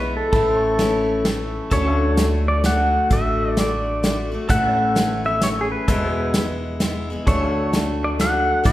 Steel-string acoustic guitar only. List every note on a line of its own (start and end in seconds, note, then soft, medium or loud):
0.00 0.33 E3 medium
0.00 0.33 G#3 medium
0.00 0.34 B3 medium
0.00 0.34 E4 medium
0.33 0.80 A2 medium
0.33 0.78 E3 medium
0.33 0.78 A3 medium
0.33 0.79 C#4 medium
0.33 0.80 E4 medium
0.79 1.24 E3 medium
0.79 1.26 A3 medium
0.79 1.26 C#4 medium
0.79 1.27 E4 medium
1.25 1.70 E3 medium
1.25 1.70 A3 medium
1.25 1.72 C#4 medium
1.25 1.73 E4 medium
1.71 2.16 D3 medium
1.71 2.18 A3 medium
1.71 2.18 D4 medium
1.71 2.19 F#4 medium
2.17 2.62 D3 medium
2.17 2.65 A3 medium
2.17 2.64 D4 medium
2.17 2.65 F#4 medium
2.64 3.09 D3 medium
2.64 3.11 A3 medium
2.64 3.11 D4 medium
2.64 3.11 F#4 medium
3.10 3.56 D3 medium
3.10 3.57 A3 medium
3.10 3.58 D4 medium
3.10 3.58 F#4 medium
3.57 4.02 D3 medium
3.57 4.04 A3 medium
3.57 4.04 D4 medium
3.57 4.05 F#4 medium
4.03 4.32 D3 medium
4.03 4.33 A3 medium
4.03 4.32 D4 medium
4.03 4.30 F#4 medium
4.32 4.49 A3 soft
4.32 4.50 D4 medium
4.32 4.50 F#4 medium
4.49 4.96 A2 medium
4.49 4.95 E3 medium
4.49 4.95 A3 medium
4.49 4.96 C#4 medium
4.49 4.98 E4 medium
4.95 5.25 E3 medium
4.95 5.25 A3 medium
4.95 5.25 C#4 medium
4.95 5.23 E4 medium
5.24 5.42 A3 soft
5.24 5.42 C#4 soft
5.24 5.42 E4 soft
5.42 5.88 E3 medium
5.42 5.89 A3 medium
5.42 5.89 C#4 medium
5.42 5.89 E4 medium
5.88 6.34 E2 medium
5.88 6.35 B2 medium
5.88 6.33 E3 medium
5.88 6.34 G#3 medium
5.88 6.35 B3 medium
5.88 6.36 E4 medium
6.34 6.79 E3 medium
6.34 6.80 G#3 medium
6.34 6.80 B3 medium
6.34 6.81 E4 medium
6.80 7.09 E3 medium
6.80 7.10 G#3 medium
6.80 7.10 B3 medium
6.80 7.09 E4 medium
7.10 7.27 E3 medium
7.10 7.28 G#3 soft
7.10 7.28 B3 soft
7.10 7.27 E4 medium
7.27 7.72 D3 medium
7.27 7.74 A3 medium
7.27 7.74 D4 medium
7.27 7.75 F#4 medium
7.73 8.18 D3 medium
7.73 8.20 A3 medium
7.73 8.20 D4 medium
7.73 8.21 F#4 medium
8.19 8.64 D3 medium
8.19 8.64 A3 medium
8.19 8.65 D4 medium
8.19 8.66 F#4 medium
8.64 8.72 A2 medium
8.64 8.72 E3 medium
8.64 8.72 A3 medium
8.64 8.72 C#4 medium
8.64 8.72 E4 medium